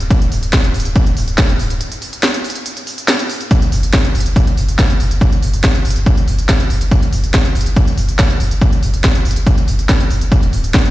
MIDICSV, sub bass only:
0, 0, Header, 1, 2, 480
1, 0, Start_track
1, 0, Tempo, 425532
1, 118, Time_signature, 4, 2, 24, 8
1, 12302, End_track
2, 0, Start_track
2, 0, Title_t, "Sub bass"
2, 0, Program_c, 0, 38
2, 4, Note_on_c, 0, 26, 82
2, 117, Note_off_c, 0, 26, 0
2, 244, Note_on_c, 0, 26, 76
2, 352, Note_off_c, 0, 26, 0
2, 359, Note_on_c, 0, 26, 97
2, 477, Note_off_c, 0, 26, 0
2, 484, Note_on_c, 0, 26, 83
2, 597, Note_off_c, 0, 26, 0
2, 723, Note_on_c, 0, 26, 79
2, 832, Note_off_c, 0, 26, 0
2, 839, Note_on_c, 0, 26, 99
2, 958, Note_off_c, 0, 26, 0
2, 964, Note_on_c, 0, 26, 81
2, 1077, Note_off_c, 0, 26, 0
2, 1205, Note_on_c, 0, 26, 76
2, 1313, Note_off_c, 0, 26, 0
2, 1320, Note_on_c, 0, 26, 102
2, 1438, Note_off_c, 0, 26, 0
2, 1445, Note_on_c, 0, 26, 83
2, 1557, Note_off_c, 0, 26, 0
2, 1684, Note_on_c, 0, 26, 77
2, 1793, Note_off_c, 0, 26, 0
2, 1800, Note_on_c, 0, 26, 97
2, 1917, Note_off_c, 0, 26, 0
2, 1924, Note_on_c, 0, 26, 81
2, 2037, Note_off_c, 0, 26, 0
2, 4081, Note_on_c, 0, 30, 76
2, 4191, Note_off_c, 0, 30, 0
2, 4198, Note_on_c, 0, 30, 99
2, 4315, Note_off_c, 0, 30, 0
2, 4322, Note_on_c, 0, 30, 82
2, 4436, Note_off_c, 0, 30, 0
2, 4562, Note_on_c, 0, 30, 77
2, 4671, Note_off_c, 0, 30, 0
2, 4677, Note_on_c, 0, 30, 98
2, 4795, Note_off_c, 0, 30, 0
2, 4802, Note_on_c, 0, 30, 78
2, 4916, Note_off_c, 0, 30, 0
2, 5042, Note_on_c, 0, 30, 77
2, 5152, Note_off_c, 0, 30, 0
2, 5159, Note_on_c, 0, 30, 98
2, 5277, Note_off_c, 0, 30, 0
2, 5284, Note_on_c, 0, 30, 82
2, 5396, Note_off_c, 0, 30, 0
2, 5524, Note_on_c, 0, 30, 78
2, 5634, Note_off_c, 0, 30, 0
2, 5640, Note_on_c, 0, 30, 98
2, 5757, Note_off_c, 0, 30, 0
2, 5764, Note_on_c, 0, 30, 79
2, 5877, Note_off_c, 0, 30, 0
2, 6004, Note_on_c, 0, 30, 79
2, 6114, Note_off_c, 0, 30, 0
2, 6120, Note_on_c, 0, 30, 98
2, 6239, Note_off_c, 0, 30, 0
2, 6245, Note_on_c, 0, 30, 83
2, 6357, Note_off_c, 0, 30, 0
2, 6484, Note_on_c, 0, 30, 80
2, 6594, Note_off_c, 0, 30, 0
2, 6600, Note_on_c, 0, 30, 101
2, 6718, Note_off_c, 0, 30, 0
2, 6725, Note_on_c, 0, 30, 80
2, 6837, Note_off_c, 0, 30, 0
2, 6964, Note_on_c, 0, 30, 76
2, 7072, Note_off_c, 0, 30, 0
2, 7079, Note_on_c, 0, 30, 101
2, 7196, Note_off_c, 0, 30, 0
2, 7203, Note_on_c, 0, 30, 83
2, 7316, Note_off_c, 0, 30, 0
2, 7444, Note_on_c, 0, 30, 78
2, 7552, Note_off_c, 0, 30, 0
2, 7559, Note_on_c, 0, 30, 98
2, 7676, Note_off_c, 0, 30, 0
2, 7683, Note_on_c, 0, 30, 83
2, 7796, Note_off_c, 0, 30, 0
2, 7923, Note_on_c, 0, 30, 77
2, 8032, Note_off_c, 0, 30, 0
2, 8039, Note_on_c, 0, 30, 100
2, 8157, Note_off_c, 0, 30, 0
2, 8164, Note_on_c, 0, 30, 83
2, 8277, Note_off_c, 0, 30, 0
2, 8403, Note_on_c, 0, 30, 79
2, 8511, Note_off_c, 0, 30, 0
2, 8518, Note_on_c, 0, 30, 100
2, 8636, Note_off_c, 0, 30, 0
2, 8643, Note_on_c, 0, 30, 83
2, 8756, Note_off_c, 0, 30, 0
2, 8881, Note_on_c, 0, 30, 77
2, 8989, Note_off_c, 0, 30, 0
2, 8996, Note_on_c, 0, 30, 100
2, 9114, Note_off_c, 0, 30, 0
2, 9121, Note_on_c, 0, 30, 85
2, 9235, Note_off_c, 0, 30, 0
2, 9362, Note_on_c, 0, 30, 81
2, 9470, Note_off_c, 0, 30, 0
2, 9477, Note_on_c, 0, 30, 97
2, 9594, Note_off_c, 0, 30, 0
2, 9601, Note_on_c, 0, 30, 81
2, 9715, Note_off_c, 0, 30, 0
2, 9842, Note_on_c, 0, 30, 77
2, 9951, Note_off_c, 0, 30, 0
2, 9958, Note_on_c, 0, 30, 100
2, 10076, Note_off_c, 0, 30, 0
2, 10083, Note_on_c, 0, 30, 82
2, 10196, Note_off_c, 0, 30, 0
2, 10323, Note_on_c, 0, 30, 79
2, 10430, Note_off_c, 0, 30, 0
2, 10437, Note_on_c, 0, 30, 102
2, 10555, Note_off_c, 0, 30, 0
2, 10562, Note_on_c, 0, 30, 79
2, 10676, Note_off_c, 0, 30, 0
2, 10802, Note_on_c, 0, 30, 75
2, 10911, Note_off_c, 0, 30, 0
2, 10918, Note_on_c, 0, 30, 101
2, 11035, Note_off_c, 0, 30, 0
2, 11041, Note_on_c, 0, 30, 82
2, 11155, Note_off_c, 0, 30, 0
2, 11282, Note_on_c, 0, 30, 80
2, 11390, Note_off_c, 0, 30, 0
2, 11397, Note_on_c, 0, 30, 96
2, 11515, Note_off_c, 0, 30, 0
2, 11522, Note_on_c, 0, 30, 80
2, 11636, Note_off_c, 0, 30, 0
2, 11761, Note_on_c, 0, 26, 76
2, 11869, Note_off_c, 0, 26, 0
2, 11876, Note_on_c, 0, 26, 97
2, 11993, Note_off_c, 0, 26, 0
2, 12000, Note_on_c, 0, 26, 83
2, 12115, Note_off_c, 0, 26, 0
2, 12241, Note_on_c, 0, 26, 80
2, 12302, Note_off_c, 0, 26, 0
2, 12302, End_track
0, 0, End_of_file